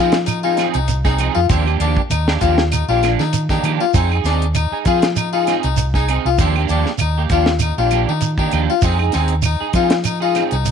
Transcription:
Already playing: clean electric guitar F3 C4 D#4, fingered electric bass F3, harpsichord F4
0.00 clean electric guitar G#4
0.12 snare, closed hi-hat
0.26 harpsichord D#4, closed hi-hat, claves, shekere
0.43 clean electric guitar C4 D#4 G#4, harpsichord F4
0.57 clean electric guitar F3 C4 D#4 G#4, snare, closed hi-hat, claves, shekere
0.74 fingered electric bass C2, harpsichord D#4, closed hi-hat
0.88 closed hi-hat, shekere
1.05 clean electric guitar C4 D#4 G#4, harpsichord D#4, kick, snare
1.18 clean electric guitar F3 C4 D#4 G#4, closed hi-hat, claves, shekere
1.35 fingered electric bass F2, harpsichord F4
1.49 fingered electric bass D#2, clean electric guitar F3 A#3 D4 G4, harpsichord C4, kick, closed hi-hat, shekere
1.66 clean electric guitar A#3 D4 G4, claves
1.80 fingered electric bass D#2, clean electric guitar F3 A#3 D4 G4, harpsichord D4, closed hi-hat, shekere
1.97 kick
2.10 fingered electric bass D#2, harpsichord D#4, closed hi-hat, claves, shekere
2.28 clean electric guitar A#3 D4 G4, snare
2.41 fingered electric bass D#2, clean electric guitar F3 A#3 D4 G4, harpsichord F4, kick, closed hi-hat, shekere
2.58 snare
2.72 harpsichord D#4, closed hi-hat, claves, shekere
2.88 fingered electric bass A#1, clean electric guitar A#3 D4 G4, harpsichord F4
3.03 clean electric guitar F3 A#3 D4, muted clean electric guitar stroke, snare, closed hi-hat, claves, shekere
3.19 fingered electric bass D#3, harpsichord D#4, snare
3.33 closed hi-hat, shekere
3.49 clean electric guitar A#3 D4 G4, harpsichord D#4, kick, snare
3.63 fingered electric bass D#3, clean electric guitar F3 A#3 D4 G4, closed hi-hat, claves, shekere
3.81 harpsichord F4
3.94 fingered electric bass F2, clean electric guitar C4 D#4 G#4, harpsichord C4, kick, closed hi-hat, shekere
4.11 clean electric guitar D#4 G#4, claves
4.24 fingered electric bass D#2, clean electric guitar C4 D#4 G#4, harpsichord D4, snare, closed hi-hat, shekere
4.42 closed hi-hat
4.55 harpsichord D#4, closed hi-hat, claves, shekere
4.72 clean electric guitar D#4 G#4, muted fingered electric bass stroke
4.85 fingered electric bass F3, clean electric guitar C4 G#4, harpsichord F4, kick, closed hi-hat, shekere
5.02 snare, closed hi-hat
5.16 harpsichord D#4, closed hi-hat, claves, shekere
5.33 clean electric guitar D#4 G#4, harpsichord F4
5.47 clean electric guitar C4 D#4 G#4, snare, closed hi-hat, claves, shekere
5.63 fingered electric bass C2, harpsichord D#4, closed hi-hat
5.77 closed hi-hat, shekere
5.94 harpsichord D#4, clean electric guitar D#4 G#4, kick, snare
6.08 clean electric guitar C4 D#4 G#4, closed hi-hat, claves, shekere
6.25 fingered electric bass C2, harpsichord F4
6.38 fingered electric bass D#2, clean electric guitar F3 A#3 D4 G4, harpsichord C4, kick, closed hi-hat, shekere
6.56 clean electric guitar A#3 D4 G4, claves
6.68 fingered electric bass D#2, clean electric guitar F3 A#3 D4 G4, harpsichord D4, closed hi-hat, shekere
6.86 snare
6.98 fingered electric bass D#2, harpsichord D#4, closed hi-hat, claves, shekere
7.18 clean electric guitar A#3 G4
7.29 fingered electric bass D#2, clean electric guitar F3 A#3 D4 G4, harpsichord F4, kick, closed hi-hat, shekere
7.46 snare
7.59 harpsichord D#4, closed hi-hat, claves, shekere
7.78 fingered electric bass A#1, clean electric guitar A#3 D4 G4, harpsichord F4
7.91 clean electric guitar F3 A#3 D4 G4, closed hi-hat, claves, shekere
8.08 fingered electric bass D#3, harpsichord D#4
8.21 closed hi-hat, shekere
8.38 clean electric guitar A#3 D4 G4, harpsichord D#4, kick
8.51 fingered electric bass D#2, clean electric guitar F3 A#3 D4 G4, closed hi-hat, claves, shekere
8.70 harpsichord F4
8.82 fingered electric bass F2, clean electric guitar C4 D#4 G#4, harpsichord C4, kick, closed hi-hat, shekere
8.99 clean electric guitar D#4 G#4, claves
9.12 fingered electric bass D#2, clean electric guitar C4 D#4 G#4, harpsichord C4, snare, closed hi-hat, shekere
9.28 closed hi-hat
9.42 harpsichord D#4, closed hi-hat, claves, shekere
9.60 clean electric guitar D#4 G#4, muted fingered electric bass stroke
9.73 fingered electric bass F3, clean electric guitar C4 D#4 G#4, harpsichord F4, kick, closed hi-hat, shekere
9.90 snare, closed hi-hat
10.04 harpsichord D#4, closed hi-hat, claves, shekere
10.20 clean electric guitar D#4 G#4, harpsichord F4
10.35 clean electric guitar C4 D#4 G#4, snare, closed hi-hat, claves, shekere
10.51 fingered electric bass C2, harpsichord D#4, closed hi-hat
10.65 closed hi-hat, shekere

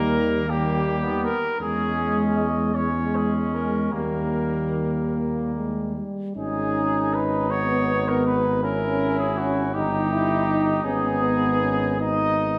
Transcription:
Already playing: tuba D#2, trombone D#3, french horn G3, trumpet A#3 A#4
0.49 trombone D#3, french horn G3, trumpet A#3 G4
1.03 trumpet B3
1.24 trumpet A#4
1.60 tuba E2, trombone G#3, french horn G#3, trumpet C#4 G#4
2.36 trumpet D#5
2.74 trombone G#3, french horn G#3, trumpet C#4 C#5
3.15 trumpet G#4
3.54 trumpet A#4
3.92 tuba D#2, trombone D#3, french horn G3, trumpet A#3 A#4
5.15 trombone A#3
5.55 trombone G#3
5.96 trombone G3
6.36 tuba G#1, trombone C#4, french horn D#4, trumpet D#4 G#4
7.14 trumpet B4
7.51 trombone B3, french horn B3, trumpet C#5
8.08 trumpet A#4
8.26 trumpet B4
8.62 trombone C#4, french horn C#4, trumpet E4 A#4
9.19 trumpet G#4
9.37 trumpet F#4
9.74 tuba G1, trombone D#4, french horn D#4, trumpet D#4 G4
10.12 french horn E4
10.48 french horn D#4
10.84 tuba G#1, trombone B3, french horn C#4, trumpet G#4
11.23 french horn B3
11.62 french horn C#4
12.00 french horn D#4, trumpet D#4 D#5

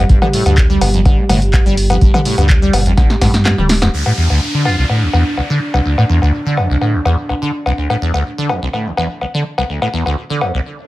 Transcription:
Already playing: analog synth pad G3 G4
0.09 analog synth bass G1, acid bass G2, kick, closed hi-hat
0.22 acid bass D3, mid tom, cowbell
0.33 acid bass A2, open hi-hat
0.46 analog synth bass D2, acid bass G2, closed hi-hat, cowbell
0.57 kick, clap, closed hi-hat
0.70 acid bass G3
0.81 analog synth bass G1, acid bass A#2, open hi-hat, cowbell
0.94 acid bass F2, closed hi-hat
1.05 acid bass D3, kick, closed hi-hat, cowbell
1.18 acid bass G2
1.29 analog synth bass G1, acid bass A2, open hi-hat, mid tom, cowbell
1.42 closed hi-hat
1.53 acid bass F2, kick, clap, closed hi-hat, cowbell
1.66 analog synth bass G1, acid bass G3
1.77 open hi-hat
1.90 acid bass F2, closed hi-hat, cowbell
2.01 analog synth bass G1, acid bass G2, kick, closed hi-hat
2.14 acid bass D3, mid tom, cowbell
2.25 acid bass A2, open hi-hat
2.38 analog synth bass D2, acid bass G2, closed hi-hat, cowbell
2.49 kick, clap, closed hi-hat
2.62 acid bass G3
2.73 analog synth bass G1, acid bass A#2, open hi-hat, cowbell
2.86 acid bass F2, closed hi-hat
2.97 acid bass D3, kick, snare, closed hi-hat, cowbell
3.10 acid bass G2, snare
3.21 analog synth bass G2, acid bass A2, kick, snare, open hi-hat, cowbell
3.34 snare, closed hi-hat
3.45 acid bass F2, snare, clap, closed hi-hat, cowbell
3.58 analog synth bass D1, acid bass G3, mid tom
3.69 snare, open hi-hat
3.82 acid bass F2, snare, closed hi-hat, cowbell
3.93 acid bass D2, analog synth pad D4, downlifter
4.06 acid bass A2, cowbell
4.18 acid bass E2
4.30 acid bass D2, cowbell
4.54 acid bass D3
4.65 acid bass F2, muted trumpet F4, cowbell
4.78 acid bass C2, muted trumpet F4
4.89 acid bass A2, cowbell
5.02 acid bass D2
5.13 acid bass E2, cowbell
5.37 acid bass C2, cowbell
5.50 acid bass D3
5.74 acid bass C2, cowbell
5.85 acid bass D2
5.98 acid bass A2, cowbell
6.09 acid bass E2
6.22 acid bass D2, cowbell
6.46 acid bass D3
6.57 acid bass F2, cowbell
6.70 acid bass C2
6.81 acid bass A2, cowbell
6.94 acid bass D2
7.05 acid bass E2, cowbell
7.29 acid bass C2, cowbell
7.42 acid bass D3
7.66 acid bass C2, cowbell
7.78 acid bass D2
7.90 acid bass A2, cowbell
8.02 acid bass E2
8.14 acid bass D2, cowbell
8.38 acid bass D3
8.49 acid bass F2, cowbell
8.62 acid bass C2
8.73 acid bass A2, cowbell
8.86 acid bass D2
8.97 acid bass E2, cowbell
9.21 acid bass C2, cowbell
9.34 acid bass D3
9.58 acid bass C2, cowbell
9.70 acid bass D2
9.82 acid bass A2, cowbell
9.94 acid bass E2
10.06 acid bass D2, cowbell
10.30 acid bass D3
10.41 acid bass F2, cowbell
10.54 acid bass C2
10.65 swell

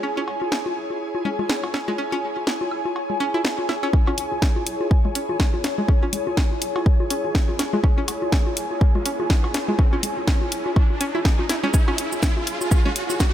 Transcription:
Already playing: ambient pad E4 G#4 C#5 G#5
0.03 synth pluck C#4
0.17 sub bass C#2, synth pluck C#4, high conga
0.28 sub bass C#2, cowbell
0.42 sub bass C#2, high conga
0.52 snare
0.66 sub bass G#1, high conga
0.76 sub bass B1
0.90 high conga
1.15 high conga
1.25 synth pluck C#4, low conga
1.39 sub bass G#1, high conga, low conga
1.49 snare
1.64 sub bass E2, cowbell, high conga
1.74 synth pluck C#4, snare, high woodblock
1.88 synth pluck G#3, high conga
1.98 synth pluck C#4
2.12 sub bass C#2, synth pluck C#4, high conga
2.23 sub bass C#2
2.37 sub bass C#2, high conga
2.47 snare
2.61 sub bass G#1, high conga
2.71 sub bass B1, high woodblock
2.85 high conga
2.96 cowbell
3.10 high conga, low conga
3.20 sub bass G#1, synth pluck C#4
3.34 synth pluck E4, high conga
3.45 snare
3.59 high conga
3.69 sub bass G#1, synth pluck E4, snare, high woodblock
3.83 synth pluck C#4, high conga, high woodblock
3.93 synth pluck C#4, kick, riser
4.07 sub bass C#2, synth pluck C#4, cowbell, high conga
4.18 sub bass C#2, closed hi-hat
4.32 sub bass C#2, high conga
4.42 kick, snare
4.56 sub bass G#1, high conga
4.67 sub bass B1, closed hi-hat
4.81 high conga
4.91 kick
5.05 high conga, low conga
5.15 synth pluck C#4, closed hi-hat
5.29 sub bass G#1, high conga
5.40 kick, snare, cowbell, low conga
5.54 sub bass E2, high conga
5.64 synth pluck C#4, snare, closed hi-hat
5.78 synth pluck G#3, high conga, low conga
5.88 synth pluck C#4, kick
6.03 sub bass C#2, synth pluck C#4, high conga
6.13 sub bass C#2, closed hi-hat, low conga
6.27 sub bass C#2, high conga
6.37 kick, snare
6.51 sub bass G#1, high conga
6.62 sub bass B1, closed hi-hat
6.76 cowbell, high conga
6.86 kick
7.00 high conga
7.10 synth pluck C#4, closed hi-hat
7.24 sub bass G#1, high conga
7.35 kick, snare
7.49 sub bass E2, high conga
7.59 synth pluck C#4, snare, closed hi-hat
7.73 synth pluck G#3, high conga, low conga
7.84 synth pluck C#4, kick
7.98 sub bass C#2, synth pluck C#4, high conga
8.08 sub bass C#2, closed hi-hat, cowbell
8.22 sub bass C#2, high conga
8.32 kick, snare
8.46 sub bass G#1, high conga
8.57 sub bass B1, closed hi-hat
8.71 high conga
8.81 kick
8.95 high conga, low conga
9.06 synth pluck C#4, closed hi-hat
9.20 sub bass G#1, high conga
9.30 kick, snare, low conga
9.44 sub bass E2, cowbell, high conga
9.54 synth pluck C#4, snare, closed hi-hat
9.68 synth pluck G#3, high conga, low conga
9.79 synth pluck C#4, kick
9.93 sub bass C#2, synth pluck C#4, high conga
10.03 sub bass C#2, closed hi-hat, low conga
10.17 sub bass C#2, high conga
10.28 kick, snare
10.42 sub bass G#1, high conga
10.52 sub bass B1, closed hi-hat
10.66 high conga
10.76 kick, cowbell
10.90 high conga
11.01 synth pluck C#4, closed hi-hat
11.15 sub bass G#1, synth pluck E4, high conga
11.25 kick, snare
11.39 sub bass E2, high conga
11.49 synth pluck E4, snare, closed hi-hat
11.63 synth pluck C#4, high conga, low conga
11.74 synth pluck C#4, kick, shaker
11.88 sub bass C#2, synth pluck C#4, cowbell, high conga
11.98 sub bass C#2, closed hi-hat
12.12 sub bass C#2, high conga, shaker
12.23 kick, snare, shaker
12.37 sub bass G#1, high conga
12.47 sub bass B1, closed hi-hat
12.61 high conga, shaker
12.71 synth pluck C#4, kick, shaker
12.85 synth pluck C#4, high conga, low conga
12.96 closed hi-hat
13.10 sub bass G#1, high conga, shaker
13.20 kick, snare, cowbell, low conga, shaker

